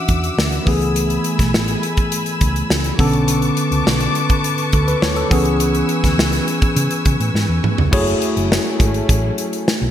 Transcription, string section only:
0.00 0.64 E5 medium
0.00 0.64 F#5 medium
0.00 0.64 D6 medium
0.00 2.95 E6 medium
0.66 2.96 A3 medium
0.66 2.96 G#5 medium
0.66 2.97 B5 medium
2.98 7.89 B4 medium
2.98 5.29 A5 medium
2.98 7.89 C#6 medium
2.98 5.29 D6 medium
5.31 7.90 G#5 medium
5.31 7.90 E6 medium
7.93 9.91 F#3 medium
7.93 9.91 A3 medium
7.93 9.91 C#4 medium
7.93 9.91 E4 medium
7.93 9.91 G#4 medium

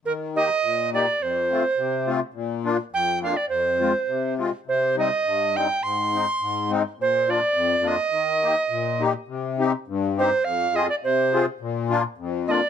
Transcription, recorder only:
0.06 0.13 A#4 medium
0.36 0.90 D#5 loud
0.94 1.24 D5 medium
1.22 2.10 C5 medium
2.94 3.22 G5 loud
3.23 3.38 F5 medium
3.37 3.48 D5 medium
3.49 4.34 C5 medium
4.69 4.96 C5 medium
4.99 5.58 D#5 medium
5.57 5.85 G5 medium
5.83 6.71 C6 medium
7.01 7.32 C5 medium
7.30 7.89 D5 loud
7.87 9.03 D#5 medium
10.19 10.46 C5 medium
10.45 10.77 F5 medium
10.76 10.89 D#5 medium
10.89 10.95 D5 medium
11.04 11.45 C5 medium
12.48 12.70 D5 medium
12.48 12.52 D#5 medium

